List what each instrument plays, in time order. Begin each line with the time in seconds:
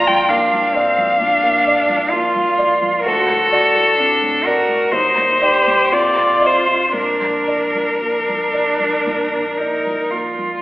Already playing: grand piano A#2 F3 D5, cello F4
0.07 grand piano F3, violin G5
0.29 grand piano A#3, cello D4, violin F5
0.53 grand piano F3
0.74 cello C4, grand piano D5
0.98 grand piano F3
1.20 grand piano A#2, cello D4
1.43 grand piano A#3
1.67 grand piano D5
1.89 grand piano F3
2.11 grand piano A#3, cello F4
2.36 grand piano F3
2.58 grand piano D5
2.82 grand piano F3
2.99 violin A#4
3.05 grand piano D2, cello F#4, violin A4
3.30 grand piano A2
3.52 cello F#4, grand piano D5
3.75 grand piano A2
3.98 grand piano C4, cello D4
4.22 grand piano A2
4.45 cello F#4, violin A#4, grand piano D5
4.68 grand piano A2
4.92 grand piano D#2, cello D#4, violin C5
5.17 grand piano A#2
5.42 cello G4, grand piano D5
5.67 grand piano A#2
5.92 grand piano F2, cello F4, violin D5
6.17 grand piano C3
6.42 grand piano D#5
6.46 violin C5
6.68 grand piano C3
6.94 grand piano A#2, cello D4
6.98 violin A#4
7.21 grand piano F3
7.48 grand piano D5
7.75 grand piano F3
8.01 grand piano A#3, cello D4
8.29 grand piano F3
8.54 grand piano D5
8.80 grand piano F3
9.06 grand piano A#2
9.35 grand piano A#3
9.57 cello D#4, grand piano D5
9.86 grand piano F3
10.11 grand piano A#3, cello F4
10.39 grand piano F3